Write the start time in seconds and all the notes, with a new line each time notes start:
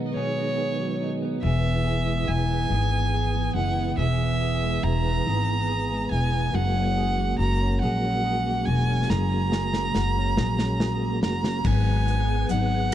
Already playing: B2 D#3 F#3 G#3 B3 D#4 G#4
0.15 B2 G#4 C#5
0.36 B3
0.58 G#4
0.79 F#3
1.01 D#4
1.22 B3
1.42 E1 E3 G#4 E5
1.64 B3
1.84 G#4
2.06 G#3
2.28 E1 E4 G#5
2.50 B3
2.70 G#1 E3 G#4
2.93 B3
3.14 G#4
3.35 G#3
3.55 F#1 E4 F#5
3.78 B3
3.97 E1 E3 G#4 E5
4.20 B3
4.41 G#4
4.64 G#3
4.83 E1 E4 A#5
5.05 B3
5.26 G#1 E3 G#4
5.49 B3
5.69 G#4
5.91 G#3
6.11 E1 E4 G#5
6.33 B3
6.52 F#1 F#3 G#3 A#3 F#4 G#4 F#5
6.76 C#4
6.97 G#4
7.19 A#3
7.39 F#1 F#4 A#5
7.61 C#4
7.81 A#1 F#3 G#4 F#5
8.03 C#4
8.24 G#4
8.46 A#3
8.66 E1 F#4 G#5
8.89 C#4
9.09 F#1 F#3 G#4 A#5, snare
9.31 C#4
9.51 G#4, snare
9.73 A#3, snare
9.95 F#1 F#4, snare
10.17 C#4
10.37 A#1 F#3 G#4, snare
10.59 C#4, snare
10.80 G#4, snare
11.02 A#3
11.22 F#1 F#4 A#5, snare
11.43 C#4, snare
11.64 G#1 G#2 D#3 F#3 B3 D#4 G#4 F#5 G#5, kick, crash
12.07 B3, closed hi-hat
12.49 G#1 F#3 B3 D#4 G#4 F#5, closed hi-hat